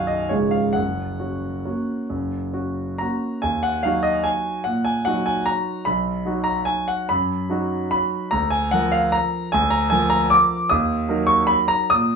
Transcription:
grand piano
Already playing: B0 B1 D#4 F#4 F5 F#5 G#5
0.07 D#5
0.29 C#1 C#2 G#3 C#4 F4 C#5
0.51 F5
0.73 F#1 F#2 F#5
1.20 C#4 F#4
1.65 A#3 C#4 F#4
2.10 F#1 F#2
2.53 C#4 F#4
2.98 A#3 C#4 F#4 A#5
3.42 D#2 G#5
3.63 F#5
3.83 F#3 D#4 F#4 F5
4.03 D#5
4.24 G#5
4.64 A#2 F#5
4.85 G#5
5.05 F#3 D#4 F#4 F#5
5.26 G#5
5.46 A#5
5.85 B1 B5
6.25 F#3 D#4 F#4
6.44 A#5
6.65 G#5
6.88 F#5
7.09 F#2 B5
7.50 F#3 D#4 F#4
7.91 B5
8.31 D2 A#5
8.50 G#5
8.71 F3 F4 A#4 F#5
8.92 F5
9.12 A#5
9.52 D2 G#5
9.70 A#5
9.90 F3 F4 A#4 G#5
10.10 A#5
10.30 D6
10.69 D#2 D#6
11.09 F#3 D#4 A#4
11.27 C#6
11.47 B5
11.68 A#5
11.90 A#2 D#6

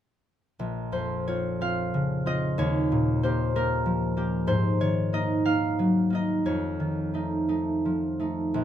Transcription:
harp
0.59 A#1
0.92 F2 C5
1.28 C4 F4 C#5
1.61 C4 F4 F5
1.94 C#3
2.26 C4 F4 D#5
2.58 D#2 C#5
2.92 A#2
3.23 A#3 G4 C5
3.55 A#3 G4 A#4
3.86 F3
4.17 A#3 G4
4.47 G#2 C5
4.80 D#3 C#5
5.13 A#3 D#4 D#5
5.45 A#3 D#4 F5
5.79 F#3
6.10 A#3 D#4
6.15 D#5
6.46 F2 C#5
6.80 D#3
7.14 A3 D#4
7.48 A3 D#4
7.85 F3
8.19 A3 D#4
8.54 A#1

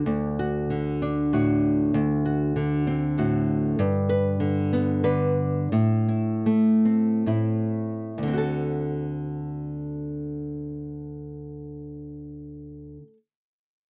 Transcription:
nylon-string guitar
Already playing: D3
0.06 D2
0.39 F#4
0.70 D3
1.02 D4
1.33 A2 F#4
1.94 D2
2.25 F#4
2.56 D3
2.87 C4
3.18 A2 F#4
3.79 G2
4.09 B4
4.40 D3
4.73 B3
5.04 D3 B4
5.72 A2
6.08 E4
6.46 A3
6.85 C4
7.26 A2 E4
8.18 D2
8.23 D3
8.28 C4
8.33 F#4
8.38 A4

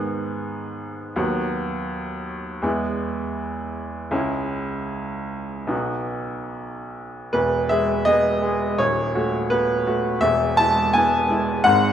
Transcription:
upright piano
Already playing: G#2 D#3 B3 G#4
1.16 D#2 F#3 B3 F#4
2.62 E2 G#3 B3 E4
4.11 C#2 G#3 C#4 E4
5.67 B1 B3 D#4 F#4
7.33 E1 E2 B4
7.69 G#3 G#4 E5
8.05 B3 G#4 D#5
8.42 G#3 G#4
8.78 D#1 D#2 C#5
9.15 A3 F#4
9.50 B3 F#4 B4
9.87 A3 F#4
10.21 E1 E2 E5
10.57 G#3 E4 A5
10.93 B3 E4 G#5
11.30 G#3 E4
11.64 G#1 G#2 F#5

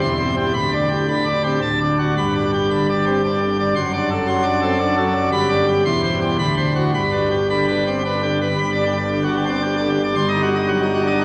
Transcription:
pipe organ
0.01 E1 E2 C6
0.19 C4 C5
0.37 G4
0.54 D1 D2 B5
0.72 D4 D5
0.90 G4
1.08 D3 B5
1.25 D4 D5
1.43 C4 G4
1.61 D1 D2 A5
1.81 D4 D5
1.98 F#4
2.17 G1 G2 B5
2.35 D4 D5
2.53 G4
2.71 D3 B5
2.89 D4 D5
3.06 C4 G4
3.24 D4 D5
3.41 D3 G4
3.60 D5
3.76 F#1 F#2 C6
3.93 D4 D5
4.11 A4
4.27 F#3 C6
4.43 D4 D5
4.62 C4 A4
4.79 D4 D5
4.97 F#3 A4
5.14 D5
5.32 G1 G2 B5
5.49 D4 D5
5.68 G4
5.86 E1 E2 C6
6.03 C5
6.21 G4
6.38 D1 D2 B5
6.57 C5
6.76 F#4
6.94 G1 G2 B5
7.11 D4 B4
7.31 G4
7.50 D3 B5
7.67 D4 B4
7.87 C4 G4
8.05 D4 B4
8.23 D3 G4
8.41 B4
8.58 G1 G2 B5
8.73 D5
8.77 D4
8.86 G4
8.98 D5
9.11 D3 G4
9.24 F#4
9.28 D4
9.37 G4
9.46 C4 D5
9.62 D4 G4
9.77 D5
9.82 D3
9.90 G4
10.04 D5
10.16 G1 G2 C6
10.29 D#4 D#5
10.43 F#4
10.56 D#5
10.68 F#3 F#4
10.82 D#4
10.94 F#4
11.02 D4
11.07 D#5
11.21 D#4 F#4

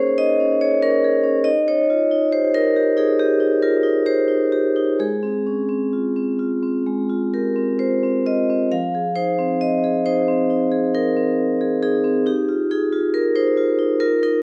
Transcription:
vibraphone
Already playing: A#3 C#4 D#4 G#4 A#4 C5 C#5
0.18 D#4 D#5
0.40 C#4
0.61 G#4 C#5
0.83 C#4 A#4
1.05 G#4
1.24 C#4
1.45 D#4 D#5
1.68 D#4 C#5
1.90 F4
2.11 D#4
2.32 G4 C5
2.54 D#4 A#4
2.76 G4
2.97 D#4 G#4
3.19 G4
3.40 D#4
3.62 F4 A#4
3.83 D#4
4.06 G4 C5
4.28 D#4
4.53 G4
4.76 D#4
4.99 G#3 G#4
5.23 C4
5.47 C#4
5.69 C4
5.93 F4
6.16 C4
6.39 F4
6.63 C4
6.86 G#3
7.09 F4
7.34 G4 A#4
7.56 C4
7.79 F4 C5
8.03 C4
8.26 F4 D#5
8.49 C4
8.71 F3 F5
8.95 G#4
9.16 D#4 C5
9.39 C4
9.61 D#5
9.84 G#4
10.06 D#4 C5
10.28 C4
10.50 D#4
10.72 G#4
10.95 D#4 A#4
11.17 C4
11.61 G#4
11.83 D#4 G#4
12.04 C4
12.26 D#4 G4
12.48 F4
12.71 D#4 G#4
12.92 F4
13.14 A#4
13.36 D#4 C5
13.58 F4
13.79 D#4
14.00 F4 A#4
14.23 D#4 A#4

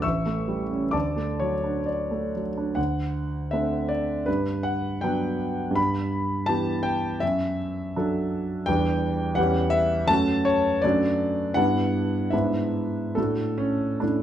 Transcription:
grand piano
0.02 A1 E5 C#6 E6
0.26 A3
0.48 G3
0.71 C#4
0.91 D2 D5 A5 D6
1.16 A3
1.40 F#3 C#5
1.64 D4
1.86 D5
2.11 A3
2.36 F#3
2.57 D4
2.75 D2 F#5
3.51 A3 C4 D4 E5
3.89 D5
4.26 G2 B4
4.63 F#5
5.01 F#3 B3 D4 G5
5.71 G2
5.75 B5
6.46 E3 B3 G4 A5
6.83 G5
7.20 F#2 E5
7.96 F#3 D4 A4
8.66 E2 G3 D4 G4 G5
9.35 E2 G3 C#4 G4 F#5
9.70 E5
10.06 F#2 A3 A5
10.10 C#4 F#4
10.45 C#5
10.82 F#2 A3 D4 F#4 D5
11.54 G2 B3 D4 E4 F#5
12.30 G#2 B3 D4 E4 E5
13.15 A2 A3 D4 F#4 A4
13.58 C#4
14.00 A2 A3 C#4 D4 E4

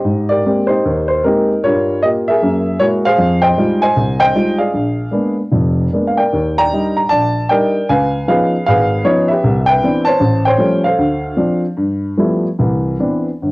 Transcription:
grand piano
Already playing: G4 C5 D#5
0.04 G#2
0.29 G4 A#4 D5
0.46 G#3 A#3 C4 G4
0.67 D#4 G4 C5
0.85 D#2
1.08 C5
1.24 G#3 A#3 C4 D#4 G4 A#4
1.64 G2 G3 F4 A#4 C#5
2.02 A#3 F4 G4 D#5
2.28 G#4 A#4 E5
2.42 F#2 A#3
2.79 G#3 A#3 E4 F#4 C#5
3.05 G#4 C5 F5
3.18 F2
3.42 C5 D#5 G5
3.57 G3 G#3 D#4 F4
3.82 C5 D#5 G#5
3.96 C2
4.20 C5 D#5 G5
4.35 G3 G#3 D#4 F4
4.58 G#4 D5 F5
4.74 A#1
5.11 G#3 A#3 B3 D4
5.51 F1 F2
5.93 G#3 A#3 B3 D4
6.07 F5
6.17 A#4 D5 G5
6.33 D#2
6.58 D5 G5 A#5
6.73 G3 D4 D#4
6.97 A#5
7.09 A#1 D5 A5
7.49 G3 D4 D#4 A#4 D5 G5
7.89 C#2 B4 F5 G#5
8.28 F3 B3 C#4 D#4 G#4 B4 F5
8.66 G#1 G#4 B4 F5
9.05 F3 B3 C#4 D#4 C#5
9.28 G4 B4 E5
9.44 C2
9.66 B4 E5 G5
9.83 E3 B3 C4 D4
10.05 C5 C#5 A5
10.20 A1
10.45 C5 C#5 G5
10.58 F3 G3 A3 C#4
10.84 A4 C5 F5
10.98 D2
11.37 F3 C4 D4
11.77 G2
12.18 F3 G3 A3 B3 E4
12.59 C2 E3
12.99 E3 B3 C4 D4
13.42 G1

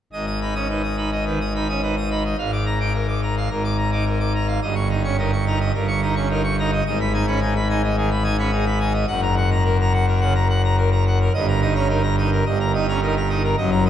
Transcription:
pipe organ
0.13 G#1 G#2 D#5
0.27 D#6
0.42 D#4 B5
0.55 C#4 D#6
0.69 D#4 B4
0.83 D#6
0.97 D#4 B5
1.12 D#5
1.26 D#3 B4
1.41 D#6
1.55 D#4 B5
1.69 C#4 D#6
1.83 D#4 B4
1.97 D#6
2.11 D#4 B5
2.25 D#5
2.38 G#1 G#2 F5
2.52 D6
2.66 A#5
2.80 D#4 D6
2.94 A#4
3.08 D6
3.23 A#5
3.37 F5
3.50 G#1 G#2 A#4
3.64 D6
3.77 A#5
3.92 D#4 D6
4.06 A#4
4.20 D6
4.35 A#5
4.48 F5
4.62 G1 G2 D#5
4.75 C#6
4.90 D#4 A#5
5.04 C#4 C#6
5.18 D#4 A#4
5.33 C#6
5.47 D#4 A#5
5.60 D#5
5.74 G1 G2 A#4
5.88 C#6
6.02 D#4 A#5
6.16 C#4 C#6
6.30 D#4 A#4
6.44 C#6
6.59 D#4 A#5
6.72 D#5
6.86 G#1 G#2 D#5
7.01 B5
7.14 D#4 G#5
7.27 C#4 B5
7.42 D#4 G#4
7.56 B5
7.70 D#4 G#5
7.84 D#5
7.97 D#3 G#4
8.11 B5
8.24 D#4 G#5
8.38 C#4 B5
8.52 D#4 G#4
8.66 B5
8.80 D#4 G#5
8.93 D#5
9.08 F#1 F#2 F#5
9.22 A#5
9.38 F#5
9.51 A#5
9.65 A#4
9.81 A#5
9.93 F#5
10.08 A#4
10.21 C#3 F#5
10.35 A#5
10.50 F#5
10.64 A#5
10.77 A#4
10.92 A#5
11.07 F#5
11.22 A#4
11.34 G1 G2 D#5
11.48 A#5
11.61 D#4 D#5
11.75 C#4 A#5
11.89 D#4 A#4
12.03 A#5
12.18 D#4 D#5
12.33 A#4
12.46 G1 G2 D#5
12.60 A#5
12.74 D#4 D#5
12.88 C#4 A#5
13.03 D#4 A#4
13.17 A#5
13.30 D#4 D#5
13.44 A#4
13.57 F#1 F#2 D#5
13.71 A#5
13.85 D#4 D#5

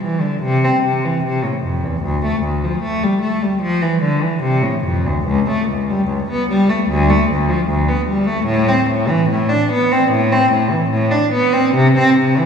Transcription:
cello
0.03 E3
0.21 D3
0.43 C3
0.64 C4
0.83 C3
1.05 E3
1.24 C3
1.44 A2
1.64 F2
1.84 E2
2.03 D2
2.26 A3
2.43 D2
2.64 F3
2.82 A3
3.03 G3
3.22 A3
3.42 G3
3.62 F3
3.82 E3
4.02 D3
4.22 E3
4.43 C3
4.62 A2
4.85 F2
5.05 D2
5.26 C#2
5.50 A3
5.69 C#2
5.90 G3
6.08 C#2
6.30 B3
6.50 G3
6.69 A3
6.89 D2
7.10 A3
7.32 D2
7.49 F3
7.69 D2
7.89 B3
8.07 G3
8.26 A3
8.46 A2
8.68 C4
8.90 A2
9.09 E3
9.30 A2
9.49 D4
9.72 B3
9.92 C4
10.11 A2
10.32 C4
10.52 A2
10.71 E3
10.90 A2
11.12 D4
11.32 B3
11.53 C4
11.74 C3
11.98 C4
12.19 C3
12.38 E3

